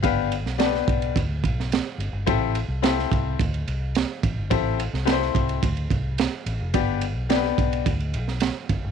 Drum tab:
RD |x-x-x-xxx-x-x-x-|x-x-x-x-xxx-x-x-|x-x-x-xxxxx-x-x-|x-x-x-xxxxx-x-x-|
SD |---ooo-----oo---|----oo------o---|---ooo------o---|----oo-----oo---|
BD |o-----o-o-o-----|o-----o-o-----o-|o-----o-o-o-----|o-----o-o-----o-|